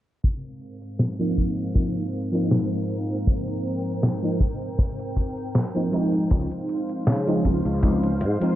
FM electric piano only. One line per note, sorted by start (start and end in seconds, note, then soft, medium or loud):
1.19 1.71 F3 medium
1.19 1.71 A#3 medium
1.19 1.71 C4 medium
1.19 1.71 D#4 medium
1.74 2.03 F3 medium
1.74 2.03 A#3 medium
1.74 2.03 C4 medium
1.74 2.03 D#4 medium
2.32 4.18 F3 medium
2.32 4.18 A#3 medium
2.32 4.19 C4 medium
2.32 4.19 D#4 medium
4.23 4.39 F3 medium
4.23 4.39 A#3 medium
4.23 4.39 C4 medium
4.23 4.39 D#4 medium
5.74 5.88 F3 medium
5.74 5.89 A#3 medium
5.74 5.89 C4 medium
5.74 5.89 D#4 medium
5.91 7.21 F3 medium
5.91 7.22 G#3 medium
5.91 7.23 C4 medium
5.91 7.23 D#4 loud
7.27 7.78 F3 medium
7.27 7.78 G#3 medium
7.27 7.79 C4 medium
7.27 7.79 D#4 medium
7.82 8.10 F3 medium
7.82 8.11 G#3 medium
7.82 8.11 C4 medium
7.82 8.11 D#4 medium
8.40 8.55 F3 medium
8.40 8.55 G#3 medium
8.40 8.55 C4 medium
8.40 8.55 D#4 loud